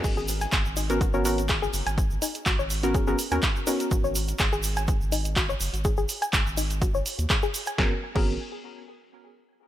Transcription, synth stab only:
X:1
M:4/4
L:1/16
Q:"Swing 16ths" 1/4=124
K:G#m
V:1 name="Synth stab"
[B,CFA]2 z4 z [B,CFA] z [B,CFA] [B,CFA] z4 z | z6 z [B,CFA]2 [B,CFA] z [B,CFA] z2 [B,CFA]2- | [B,CFA]2 z12 z2 | z16 |
[B,CFA] z2 [B,CFA]2 z8 z3 |]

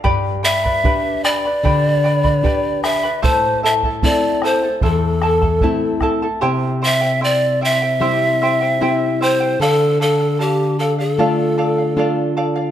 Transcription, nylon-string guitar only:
X:1
M:4/4
L:1/8
Q:1/4=76
K:C
V:1 name="Nylon-string guitar"
G,,2 [DGB]2 D,2 [DGB]2 | A,,2 [A,CE]2 E,,2 [A,CE]2 | C,4 [G,CE]2 [G,CE]2 | D,4 [A,DF]2 [A,DF]2 |]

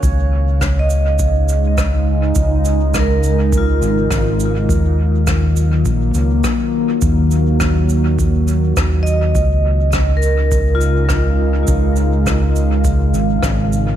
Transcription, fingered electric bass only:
X:1
M:4/4
L:1/8
Q:"Swing 16ths" 1/4=103
K:Dbmix
V:1 name="Fingered electric bass" clef=bass
D,,8 | D,,4- D,, A,,, A,,,2 | E,,4 B,,, D,, z2 | E,,6 E,,2 |
D,,8 | D,,4- D,, A,,, A,,,2 |]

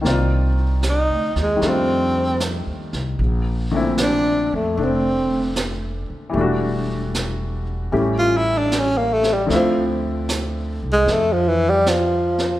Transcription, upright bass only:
X:1
M:4/4
L:1/8
Q:"Swing" 1/4=76
K:Bblyd
V:1 name="Upright bass" clef=bass
C,,2- (3C,, D,, _E,, F,,2- (3F,, E,, C,, | B,,,3 F,, F,,,3 z | E,,,4 A,,,4 | D,,3 C,, F,,4 |]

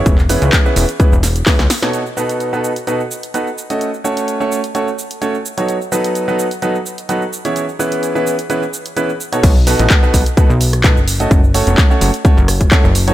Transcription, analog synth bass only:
X:1
M:4/4
L:1/16
Q:"Swing 16ths" 1/4=128
K:Bmix
V:1 name="Analog synth bass" clef=bass
E,,,3 C,, z2 E,,, z2 E,,,3 z C,, z2 | z16 | z16 | z16 |
z16 | B,,,3 A,,, z2 B,,, z2 B,,,4 F,,,3 | F,,,3 E,,, z2 F,,, z2 F,,,3 z F,,,3 |]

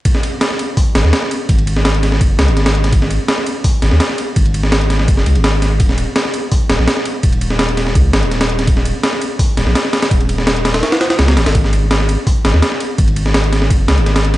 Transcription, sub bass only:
X:1
M:4/4
L:1/16
Q:1/4=167
K:D#phr
V:1 name="Sub bass" clef=bass
z8 z2 G,,, D,, z4 | G,,,8 F,,,2 C,, G,,,4- G,,,- | G,,,3 z6 z G,,, D,, z4 | G,,,8 F,,,2 C,, G,,,4- G,,, |
D,,,3 z6 z D,,, A,,, z4 | D,,,8 C,,2 G,,, D,,,4- D,,,- | D,,,3 z6 z D,,, A,,, z4 | D,,,8 z4 C,,2 G,,, G,,,- |
G,,,6- G,,, z3 G,,, D,, z4 | G,,,8 F,,,2 C,, G,,,4- G,,, |]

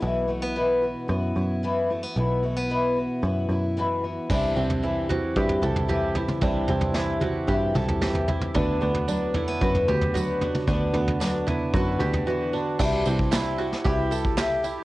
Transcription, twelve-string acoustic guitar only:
X:1
M:4/4
L:1/8
Q:1/4=113
K:Clyd
V:1 name="Twelve-string acoustic guitar"
[B,,E,B,EF] [B,EF] [B,,E,B,EF] [B,EF] [E,B,EF] [B,EF] [B,,E,B,EF] [B,EF] | [B,,E,B,EF] [B,EF] [B,,E,B,EF] [EF] [E,B,EF] [B,EF] [B,,E,B,EF] [B,EF] | [C,E,G,EG] [G,EG] [E,G,EG] [G,EG] [C,E,G,EG] [G,EG] [E,G,EG] [G,EG] | [C,E,G,EG] [G,EG] [E,G,EG] [G,EG] [C,E,G,EG] [G,EG] [E,G,EG] [G,EG] |
[D,B,DF] [B,DF] [D,B,DF] [B,DF] [D,B,DF] [B,DF] [D,B,DF] [B,DF] | [D,B,DF] [B,DF] [D,B,DF] [B,DF] [D,B,DF] [B,DF] [D,B,DF] [B,DF] | [C,E,G,EG] [G,EG] [E,G,EG] [G,EG] [C,E,G,EG] [G,EG] [E,G,EG] [G,EG] |]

